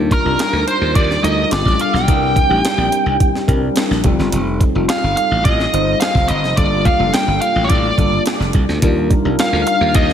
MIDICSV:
0, 0, Header, 1, 5, 480
1, 0, Start_track
1, 0, Key_signature, -2, "minor"
1, 0, Tempo, 562324
1, 1772, Time_signature, 4, 2, 24, 8
1, 8648, End_track
2, 0, Start_track
2, 0, Title_t, "Lead electric guitar"
2, 0, Program_c, 0, 29
2, 110, Note_on_c, 0, 70, 75
2, 548, Note_off_c, 0, 70, 0
2, 576, Note_on_c, 0, 72, 62
2, 815, Note_off_c, 0, 72, 0
2, 818, Note_on_c, 0, 74, 74
2, 1056, Note_off_c, 0, 74, 0
2, 1059, Note_on_c, 0, 75, 74
2, 1298, Note_off_c, 0, 75, 0
2, 1302, Note_on_c, 0, 74, 73
2, 1543, Note_on_c, 0, 77, 88
2, 1544, Note_off_c, 0, 74, 0
2, 1657, Note_off_c, 0, 77, 0
2, 1660, Note_on_c, 0, 79, 88
2, 3062, Note_off_c, 0, 79, 0
2, 4179, Note_on_c, 0, 77, 76
2, 4402, Note_off_c, 0, 77, 0
2, 4412, Note_on_c, 0, 77, 62
2, 4635, Note_off_c, 0, 77, 0
2, 4647, Note_on_c, 0, 75, 76
2, 5096, Note_off_c, 0, 75, 0
2, 5122, Note_on_c, 0, 77, 73
2, 5362, Note_on_c, 0, 75, 77
2, 5374, Note_off_c, 0, 77, 0
2, 5608, Note_off_c, 0, 75, 0
2, 5612, Note_on_c, 0, 74, 83
2, 5849, Note_on_c, 0, 77, 80
2, 5859, Note_off_c, 0, 74, 0
2, 6092, Note_off_c, 0, 77, 0
2, 6096, Note_on_c, 0, 79, 91
2, 6317, Note_off_c, 0, 79, 0
2, 6327, Note_on_c, 0, 77, 74
2, 6515, Note_off_c, 0, 77, 0
2, 6523, Note_on_c, 0, 73, 52
2, 6567, Note_off_c, 0, 73, 0
2, 6571, Note_on_c, 0, 74, 65
2, 7018, Note_off_c, 0, 74, 0
2, 8025, Note_on_c, 0, 77, 88
2, 8247, Note_off_c, 0, 77, 0
2, 8257, Note_on_c, 0, 77, 75
2, 8479, Note_off_c, 0, 77, 0
2, 8499, Note_on_c, 0, 75, 86
2, 8648, Note_off_c, 0, 75, 0
2, 8648, End_track
3, 0, Start_track
3, 0, Title_t, "Tine electric piano"
3, 0, Program_c, 1, 4
3, 0, Note_on_c, 1, 55, 71
3, 0, Note_on_c, 1, 62, 62
3, 0, Note_on_c, 1, 63, 67
3, 0, Note_on_c, 1, 65, 65
3, 0, Note_on_c, 1, 70, 81
3, 13, Control_c, 1, 64, 127
3, 86, Note_off_c, 1, 55, 0
3, 88, Note_off_c, 1, 62, 0
3, 89, Note_off_c, 1, 63, 0
3, 90, Note_off_c, 1, 65, 0
3, 92, Note_off_c, 1, 70, 0
3, 204, Note_on_c, 1, 55, 69
3, 207, Note_on_c, 1, 62, 60
3, 210, Note_on_c, 1, 63, 65
3, 212, Note_on_c, 1, 65, 55
3, 214, Note_on_c, 1, 70, 68
3, 765, Note_off_c, 1, 55, 0
3, 766, Note_off_c, 1, 62, 0
3, 767, Note_off_c, 1, 63, 0
3, 769, Note_off_c, 1, 65, 0
3, 769, Note_off_c, 1, 70, 0
3, 1045, Note_on_c, 1, 55, 60
3, 1049, Note_on_c, 1, 62, 57
3, 1052, Note_on_c, 1, 65, 58
3, 1053, Note_on_c, 1, 63, 57
3, 1055, Note_on_c, 1, 70, 66
3, 1276, Note_off_c, 1, 55, 0
3, 1283, Note_off_c, 1, 62, 0
3, 1286, Note_off_c, 1, 65, 0
3, 1286, Note_on_c, 1, 55, 72
3, 1289, Note_on_c, 1, 59, 61
3, 1292, Note_off_c, 1, 63, 0
3, 1293, Note_on_c, 1, 62, 56
3, 1294, Note_off_c, 1, 70, 0
3, 1296, Note_on_c, 1, 65, 59
3, 1296, Note_on_c, 1, 69, 72
3, 1304, Control_c, 1, 64, 0
3, 1429, Control_c, 1, 64, 127
3, 1673, Note_off_c, 1, 55, 0
3, 1675, Note_off_c, 1, 59, 0
3, 1676, Note_off_c, 1, 62, 0
3, 1678, Note_off_c, 1, 65, 0
3, 1678, Note_off_c, 1, 69, 0
3, 1764, Note_on_c, 1, 55, 65
3, 1768, Note_on_c, 1, 60, 55
3, 1772, Note_on_c, 1, 64, 63
3, 1773, Note_on_c, 1, 62, 56
3, 1777, Note_on_c, 1, 70, 69
3, 1785, Control_c, 1, 64, 0
3, 1931, Control_c, 1, 64, 127
3, 2007, Note_off_c, 1, 55, 0
3, 2008, Note_off_c, 1, 60, 0
3, 2011, Note_off_c, 1, 62, 0
3, 2011, Note_off_c, 1, 64, 0
3, 2013, Note_off_c, 1, 70, 0
3, 2125, Note_on_c, 1, 55, 65
3, 2128, Note_on_c, 1, 60, 64
3, 2130, Note_on_c, 1, 62, 58
3, 2133, Note_on_c, 1, 63, 48
3, 2134, Note_on_c, 1, 67, 75
3, 2188, Note_off_c, 1, 63, 0
3, 2190, Note_on_c, 1, 64, 58
3, 2685, Note_off_c, 1, 55, 0
3, 2687, Note_off_c, 1, 60, 0
3, 2688, Note_off_c, 1, 62, 0
3, 2690, Note_off_c, 1, 67, 0
3, 2718, Note_off_c, 1, 64, 0
3, 2965, Note_on_c, 1, 55, 74
3, 2967, Note_on_c, 1, 60, 73
3, 2969, Note_on_c, 1, 62, 62
3, 2969, Note_on_c, 1, 64, 65
3, 2972, Note_on_c, 1, 70, 77
3, 3438, Note_off_c, 1, 55, 0
3, 3439, Note_off_c, 1, 60, 0
3, 3448, Note_off_c, 1, 62, 0
3, 3448, Note_off_c, 1, 64, 0
3, 3448, Note_on_c, 1, 55, 81
3, 3449, Note_off_c, 1, 70, 0
3, 3449, Note_on_c, 1, 60, 76
3, 3454, Note_on_c, 1, 63, 74
3, 3454, Note_on_c, 1, 65, 68
3, 3460, Note_on_c, 1, 69, 85
3, 3463, Control_c, 1, 64, 0
3, 3599, Control_c, 1, 64, 127
3, 3930, Note_off_c, 1, 55, 0
3, 3931, Note_off_c, 1, 60, 0
3, 3933, Note_off_c, 1, 63, 0
3, 3933, Note_off_c, 1, 65, 0
3, 3936, Note_off_c, 1, 69, 0
3, 4050, Note_on_c, 1, 55, 63
3, 4053, Note_on_c, 1, 60, 58
3, 4055, Note_on_c, 1, 63, 58
3, 4059, Note_on_c, 1, 65, 65
3, 4060, Note_on_c, 1, 69, 70
3, 4608, Note_off_c, 1, 55, 0
3, 4609, Note_off_c, 1, 60, 0
3, 4610, Note_off_c, 1, 63, 0
3, 4612, Note_off_c, 1, 65, 0
3, 4613, Note_off_c, 1, 69, 0
3, 4887, Note_on_c, 1, 55, 59
3, 4888, Note_on_c, 1, 60, 57
3, 4890, Note_on_c, 1, 63, 62
3, 4894, Note_on_c, 1, 65, 56
3, 4898, Note_on_c, 1, 72, 68
3, 5367, Note_off_c, 1, 55, 0
3, 5367, Note_off_c, 1, 60, 0
3, 5368, Note_off_c, 1, 63, 0
3, 5370, Note_off_c, 1, 65, 0
3, 5372, Note_off_c, 1, 72, 0
3, 5608, Note_on_c, 1, 55, 60
3, 5610, Note_on_c, 1, 58, 58
3, 5612, Note_on_c, 1, 65, 64
3, 5614, Note_on_c, 1, 62, 58
3, 5618, Note_on_c, 1, 69, 71
3, 5624, Control_c, 1, 64, 0
3, 5750, Control_c, 1, 64, 127
3, 5848, Note_off_c, 1, 55, 0
3, 5849, Note_off_c, 1, 58, 0
3, 5851, Note_off_c, 1, 65, 0
3, 5852, Note_off_c, 1, 62, 0
3, 5853, Note_off_c, 1, 69, 0
3, 5965, Note_on_c, 1, 58, 62
3, 5966, Note_on_c, 1, 55, 65
3, 5967, Note_on_c, 1, 62, 55
3, 5972, Note_on_c, 1, 65, 66
3, 5973, Note_on_c, 1, 69, 75
3, 6525, Note_off_c, 1, 58, 0
3, 6526, Note_off_c, 1, 55, 0
3, 6526, Note_off_c, 1, 62, 0
3, 6528, Note_off_c, 1, 65, 0
3, 6529, Note_off_c, 1, 69, 0
3, 6809, Note_on_c, 1, 58, 51
3, 6810, Note_on_c, 1, 55, 61
3, 6812, Note_on_c, 1, 62, 55
3, 6816, Note_on_c, 1, 65, 53
3, 6818, Note_on_c, 1, 69, 69
3, 7288, Note_off_c, 1, 55, 0
3, 7288, Note_off_c, 1, 58, 0
3, 7289, Note_off_c, 1, 62, 0
3, 7291, Note_off_c, 1, 65, 0
3, 7292, Note_off_c, 1, 69, 0
3, 7530, Note_on_c, 1, 55, 71
3, 7533, Note_on_c, 1, 62, 71
3, 7535, Note_on_c, 1, 63, 64
3, 7541, Note_on_c, 1, 65, 73
3, 7542, Note_on_c, 1, 70, 90
3, 7543, Control_c, 1, 64, 0
3, 7695, Control_c, 1, 64, 127
3, 7770, Note_off_c, 1, 55, 0
3, 7771, Note_off_c, 1, 62, 0
3, 7772, Note_off_c, 1, 63, 0
3, 7775, Note_off_c, 1, 65, 0
3, 7776, Note_off_c, 1, 70, 0
3, 7887, Note_on_c, 1, 55, 68
3, 7893, Note_on_c, 1, 62, 60
3, 7893, Note_on_c, 1, 63, 63
3, 7896, Note_on_c, 1, 65, 60
3, 7897, Note_on_c, 1, 70, 77
3, 8447, Note_off_c, 1, 55, 0
3, 8450, Note_off_c, 1, 62, 0
3, 8450, Note_off_c, 1, 63, 0
3, 8451, Note_off_c, 1, 65, 0
3, 8452, Note_off_c, 1, 70, 0
3, 8648, End_track
4, 0, Start_track
4, 0, Title_t, "Slap bass"
4, 0, Program_c, 2, 36
4, 0, Note_on_c, 2, 39, 91
4, 112, Note_off_c, 2, 39, 0
4, 216, Note_on_c, 2, 36, 71
4, 300, Note_off_c, 2, 36, 0
4, 451, Note_on_c, 2, 38, 79
4, 537, Note_off_c, 2, 38, 0
4, 693, Note_on_c, 2, 39, 66
4, 779, Note_off_c, 2, 39, 0
4, 816, Note_on_c, 2, 39, 79
4, 986, Note_off_c, 2, 39, 0
4, 1053, Note_on_c, 2, 38, 65
4, 1224, Note_off_c, 2, 38, 0
4, 1294, Note_on_c, 2, 31, 78
4, 1379, Note_off_c, 2, 31, 0
4, 1412, Note_on_c, 2, 33, 79
4, 1498, Note_off_c, 2, 33, 0
4, 1652, Note_on_c, 2, 35, 74
4, 1775, Note_off_c, 2, 35, 0
4, 1775, Note_on_c, 2, 36, 95
4, 2031, Note_off_c, 2, 36, 0
4, 2135, Note_on_c, 2, 33, 77
4, 2220, Note_off_c, 2, 33, 0
4, 2370, Note_on_c, 2, 34, 87
4, 2457, Note_off_c, 2, 34, 0
4, 2611, Note_on_c, 2, 36, 74
4, 2697, Note_off_c, 2, 36, 0
4, 2972, Note_on_c, 2, 36, 60
4, 3143, Note_off_c, 2, 36, 0
4, 3334, Note_on_c, 2, 34, 78
4, 3419, Note_off_c, 2, 34, 0
4, 3452, Note_on_c, 2, 29, 77
4, 3538, Note_off_c, 2, 29, 0
4, 3575, Note_on_c, 2, 31, 74
4, 3660, Note_off_c, 2, 31, 0
4, 3692, Note_on_c, 2, 29, 77
4, 3950, Note_off_c, 2, 29, 0
4, 4056, Note_on_c, 2, 29, 75
4, 4140, Note_off_c, 2, 29, 0
4, 4298, Note_on_c, 2, 31, 71
4, 4382, Note_off_c, 2, 31, 0
4, 4534, Note_on_c, 2, 33, 78
4, 4619, Note_off_c, 2, 33, 0
4, 4654, Note_on_c, 2, 33, 80
4, 4825, Note_off_c, 2, 33, 0
4, 4894, Note_on_c, 2, 31, 76
4, 5065, Note_off_c, 2, 31, 0
4, 5248, Note_on_c, 2, 29, 75
4, 5335, Note_off_c, 2, 29, 0
4, 5373, Note_on_c, 2, 31, 77
4, 5495, Note_off_c, 2, 31, 0
4, 5495, Note_on_c, 2, 29, 76
4, 5579, Note_off_c, 2, 29, 0
4, 5609, Note_on_c, 2, 31, 95
4, 5868, Note_off_c, 2, 31, 0
4, 5969, Note_on_c, 2, 29, 72
4, 6056, Note_off_c, 2, 29, 0
4, 6210, Note_on_c, 2, 31, 75
4, 6297, Note_off_c, 2, 31, 0
4, 6449, Note_on_c, 2, 33, 74
4, 6536, Note_off_c, 2, 33, 0
4, 6570, Note_on_c, 2, 33, 83
4, 6743, Note_off_c, 2, 33, 0
4, 6809, Note_on_c, 2, 31, 73
4, 6982, Note_off_c, 2, 31, 0
4, 7170, Note_on_c, 2, 29, 81
4, 7256, Note_off_c, 2, 29, 0
4, 7292, Note_on_c, 2, 36, 82
4, 7378, Note_off_c, 2, 36, 0
4, 7415, Note_on_c, 2, 38, 79
4, 7500, Note_off_c, 2, 38, 0
4, 7533, Note_on_c, 2, 39, 80
4, 7790, Note_off_c, 2, 39, 0
4, 7895, Note_on_c, 2, 36, 72
4, 7980, Note_off_c, 2, 36, 0
4, 8131, Note_on_c, 2, 38, 73
4, 8218, Note_off_c, 2, 38, 0
4, 8371, Note_on_c, 2, 39, 75
4, 8458, Note_off_c, 2, 39, 0
4, 8492, Note_on_c, 2, 39, 88
4, 8648, Note_off_c, 2, 39, 0
4, 8648, End_track
5, 0, Start_track
5, 0, Title_t, "Drums"
5, 94, Note_on_c, 9, 36, 76
5, 96, Note_on_c, 9, 42, 54
5, 179, Note_off_c, 9, 36, 0
5, 182, Note_off_c, 9, 42, 0
5, 335, Note_on_c, 9, 42, 75
5, 341, Note_on_c, 9, 38, 96
5, 421, Note_off_c, 9, 42, 0
5, 427, Note_off_c, 9, 38, 0
5, 577, Note_on_c, 9, 42, 62
5, 663, Note_off_c, 9, 42, 0
5, 815, Note_on_c, 9, 42, 73
5, 816, Note_on_c, 9, 36, 75
5, 900, Note_off_c, 9, 42, 0
5, 901, Note_off_c, 9, 36, 0
5, 947, Note_on_c, 9, 38, 32
5, 1032, Note_off_c, 9, 38, 0
5, 1062, Note_on_c, 9, 42, 62
5, 1148, Note_off_c, 9, 42, 0
5, 1292, Note_on_c, 9, 42, 70
5, 1304, Note_on_c, 9, 38, 98
5, 1377, Note_off_c, 9, 42, 0
5, 1389, Note_off_c, 9, 38, 0
5, 1413, Note_on_c, 9, 36, 72
5, 1427, Note_on_c, 9, 38, 28
5, 1498, Note_off_c, 9, 36, 0
5, 1512, Note_off_c, 9, 38, 0
5, 1532, Note_on_c, 9, 42, 60
5, 1618, Note_off_c, 9, 42, 0
5, 1668, Note_on_c, 9, 38, 29
5, 1753, Note_off_c, 9, 38, 0
5, 1775, Note_on_c, 9, 36, 91
5, 1778, Note_on_c, 9, 42, 88
5, 1861, Note_off_c, 9, 36, 0
5, 1863, Note_off_c, 9, 42, 0
5, 2015, Note_on_c, 9, 36, 85
5, 2020, Note_on_c, 9, 42, 52
5, 2100, Note_off_c, 9, 36, 0
5, 2105, Note_off_c, 9, 42, 0
5, 2259, Note_on_c, 9, 42, 87
5, 2265, Note_on_c, 9, 38, 95
5, 2345, Note_off_c, 9, 42, 0
5, 2350, Note_off_c, 9, 38, 0
5, 2496, Note_on_c, 9, 42, 63
5, 2581, Note_off_c, 9, 42, 0
5, 2735, Note_on_c, 9, 36, 75
5, 2735, Note_on_c, 9, 42, 76
5, 2820, Note_off_c, 9, 36, 0
5, 2820, Note_off_c, 9, 42, 0
5, 2864, Note_on_c, 9, 38, 29
5, 2949, Note_off_c, 9, 38, 0
5, 2972, Note_on_c, 9, 36, 75
5, 2977, Note_on_c, 9, 42, 62
5, 3057, Note_off_c, 9, 36, 0
5, 3062, Note_off_c, 9, 42, 0
5, 3207, Note_on_c, 9, 42, 69
5, 3219, Note_on_c, 9, 38, 98
5, 3292, Note_off_c, 9, 42, 0
5, 3305, Note_off_c, 9, 38, 0
5, 3343, Note_on_c, 9, 38, 30
5, 3428, Note_off_c, 9, 38, 0
5, 3446, Note_on_c, 9, 42, 64
5, 3452, Note_on_c, 9, 36, 88
5, 3532, Note_off_c, 9, 42, 0
5, 3537, Note_off_c, 9, 36, 0
5, 3582, Note_on_c, 9, 38, 27
5, 3667, Note_off_c, 9, 38, 0
5, 3692, Note_on_c, 9, 42, 93
5, 3777, Note_off_c, 9, 42, 0
5, 3931, Note_on_c, 9, 36, 73
5, 3933, Note_on_c, 9, 42, 55
5, 4017, Note_off_c, 9, 36, 0
5, 4019, Note_off_c, 9, 42, 0
5, 4174, Note_on_c, 9, 42, 88
5, 4179, Note_on_c, 9, 38, 93
5, 4259, Note_off_c, 9, 42, 0
5, 4265, Note_off_c, 9, 38, 0
5, 4414, Note_on_c, 9, 42, 59
5, 4500, Note_off_c, 9, 42, 0
5, 4653, Note_on_c, 9, 42, 72
5, 4654, Note_on_c, 9, 36, 77
5, 4738, Note_off_c, 9, 42, 0
5, 4739, Note_off_c, 9, 36, 0
5, 4782, Note_on_c, 9, 38, 32
5, 4867, Note_off_c, 9, 38, 0
5, 4897, Note_on_c, 9, 42, 67
5, 4983, Note_off_c, 9, 42, 0
5, 5127, Note_on_c, 9, 42, 69
5, 5139, Note_on_c, 9, 38, 98
5, 5212, Note_off_c, 9, 42, 0
5, 5225, Note_off_c, 9, 38, 0
5, 5249, Note_on_c, 9, 36, 86
5, 5260, Note_on_c, 9, 38, 32
5, 5334, Note_off_c, 9, 36, 0
5, 5345, Note_off_c, 9, 38, 0
5, 5365, Note_on_c, 9, 42, 63
5, 5450, Note_off_c, 9, 42, 0
5, 5499, Note_on_c, 9, 38, 27
5, 5584, Note_off_c, 9, 38, 0
5, 5611, Note_on_c, 9, 36, 86
5, 5612, Note_on_c, 9, 42, 92
5, 5697, Note_off_c, 9, 36, 0
5, 5697, Note_off_c, 9, 42, 0
5, 5850, Note_on_c, 9, 36, 86
5, 5851, Note_on_c, 9, 42, 49
5, 5936, Note_off_c, 9, 36, 0
5, 5936, Note_off_c, 9, 42, 0
5, 6092, Note_on_c, 9, 42, 82
5, 6098, Note_on_c, 9, 38, 101
5, 6177, Note_off_c, 9, 42, 0
5, 6183, Note_off_c, 9, 38, 0
5, 6331, Note_on_c, 9, 42, 56
5, 6416, Note_off_c, 9, 42, 0
5, 6569, Note_on_c, 9, 42, 74
5, 6573, Note_on_c, 9, 36, 80
5, 6655, Note_off_c, 9, 42, 0
5, 6658, Note_off_c, 9, 36, 0
5, 6811, Note_on_c, 9, 36, 72
5, 6817, Note_on_c, 9, 42, 62
5, 6896, Note_off_c, 9, 36, 0
5, 6902, Note_off_c, 9, 42, 0
5, 7048, Note_on_c, 9, 42, 65
5, 7060, Note_on_c, 9, 38, 97
5, 7133, Note_off_c, 9, 42, 0
5, 7145, Note_off_c, 9, 38, 0
5, 7182, Note_on_c, 9, 38, 31
5, 7267, Note_off_c, 9, 38, 0
5, 7284, Note_on_c, 9, 42, 58
5, 7292, Note_on_c, 9, 36, 66
5, 7369, Note_off_c, 9, 42, 0
5, 7378, Note_off_c, 9, 36, 0
5, 7419, Note_on_c, 9, 38, 28
5, 7505, Note_off_c, 9, 38, 0
5, 7531, Note_on_c, 9, 36, 90
5, 7531, Note_on_c, 9, 42, 91
5, 7616, Note_off_c, 9, 42, 0
5, 7617, Note_off_c, 9, 36, 0
5, 7771, Note_on_c, 9, 36, 71
5, 7773, Note_on_c, 9, 42, 57
5, 7857, Note_off_c, 9, 36, 0
5, 7859, Note_off_c, 9, 42, 0
5, 8014, Note_on_c, 9, 42, 88
5, 8020, Note_on_c, 9, 38, 85
5, 8099, Note_off_c, 9, 42, 0
5, 8105, Note_off_c, 9, 38, 0
5, 8252, Note_on_c, 9, 42, 62
5, 8337, Note_off_c, 9, 42, 0
5, 8489, Note_on_c, 9, 42, 78
5, 8493, Note_on_c, 9, 36, 80
5, 8575, Note_off_c, 9, 42, 0
5, 8578, Note_off_c, 9, 36, 0
5, 8621, Note_on_c, 9, 38, 30
5, 8648, Note_off_c, 9, 38, 0
5, 8648, End_track
0, 0, End_of_file